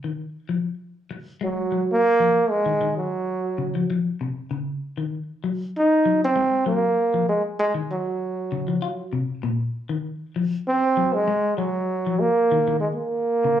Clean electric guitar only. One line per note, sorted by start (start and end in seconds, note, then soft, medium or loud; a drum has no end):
0.04 0.29 D#3 medium
0.49 0.74 F3 medium
1.11 muted clean electric guitar stroke medium
1.41 1.66 G#3 medium
1.72 1.97 F#3 medium
2.20 2.45 F3 medium
2.66 2.79 D#3 medium
2.81 3.06 D#3 medium
3.58 3.71 C#3 medium
3.75 3.86 F3 medium
3.90 4.15 F3 medium
4.21 4.45 C3 medium
4.51 4.76 C#3 medium
4.97 5.22 D#3 medium
5.44 5.68 F#3 medium
6.05 6.30 F#3 medium
6.36 6.61 G#3 medium
6.66 6.91 F#3 medium
7.14 7.39 F3 medium
7.74 8.00 D#3 medium
8.52 8.65 C#3 medium
8.68 8.80 F3 medium
8.82 9.07 F4 medium
9.13 9.38 C3 medium
9.43 9.68 A#2 medium
9.89 10.15 D#3 medium
10.36 10.61 F3 medium
10.97 11.22 F#3 medium
11.28 11.53 G#3 medium
11.58 11.83 F#3 medium
12.06 12.31 F3 medium
12.52 12.65 D#3 medium
12.68 12.92 D#3 medium
13.44 13.57 C#3 medium